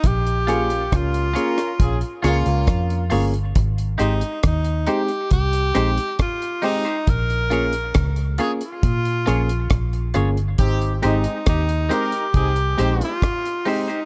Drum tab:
HH |xxxxxxxxxxxxxxox|xxxxxxxxxxxxxxox|xxxxxxxxxxxxxxxx|xxxxxxxxxxxxxxox|
SD |----r--r--r-r---|----r-----r-r---|----r-----r-r---|----r-------r---|
BD |o---o---o---o---|o---o---o---o---|o---o---o---o---|o---o---o---o---|